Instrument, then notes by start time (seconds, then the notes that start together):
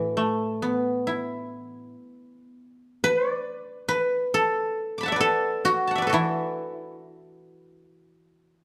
guzheng
Already playing: A2 E3 F#3 A3 B3 D4 E4 F#4 G#4
0.08 A4
0.17 A3
0.62 B3
1.07 E4
3.04 B4
3.30 D5
3.89 B4
4.34 A4
4.98 B5 D6
5.03 F#5 A5
5.08 E5
5.12 B4 D5
5.20 A4
5.65 F#4
5.87 F#5 A5
5.95 D5 E5
6.02 B4
6.07 F#4 A4
6.13 E3 E4